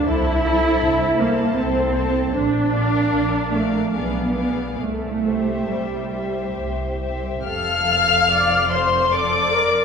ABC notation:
X:1
M:3/4
L:1/8
Q:1/4=73
K:F
V:1 name="Violin section"
a a2 a2 a | z f2 f f f | z e2 e2 e | f'3 c' d'2 |]
V:2 name="Violin section"
[Ac] [Ac]2 [Ac]2 [Ac] | z [Bd]2 [Bd] [^Gd] [Gd] | z [Gc]2 [Gc]2 [Gc] | f3 c d2 |]
V:3 name="Viola section"
E3 B, C2 | D3 A, =B,2 | A,2 G,2 z2 | A2 d c A B |]
V:4 name="Cello section"
E3 B, C2 | D3 A, =B,2 | A,2 G,2 z2 | F,,6 |]
V:5 name="Double bass section" clef=bass
C,,2 C,,2 C,,2 | B,,,2 B,,,2 =B,,,2 | C,,2 C,,2 C,,2 | F,,,6 |]